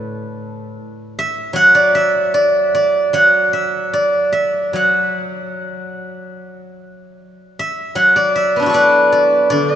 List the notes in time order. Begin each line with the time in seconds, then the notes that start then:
Already playing: A2 A4
1.19 E5
1.53 F#3 F#5
1.75 D5
1.95 E5
2.34 D5
2.75 D5
3.13 F#3 F#5
3.53 E5
3.93 D5
4.33 E5
4.73 F#3 F#5
7.59 E5
7.95 F#3 F#5
8.16 D5
8.36 E5
8.56 B3 D4
8.62 E4 F#4
8.70 A4
8.74 B4 D5
9.12 D5
9.50 D3 D5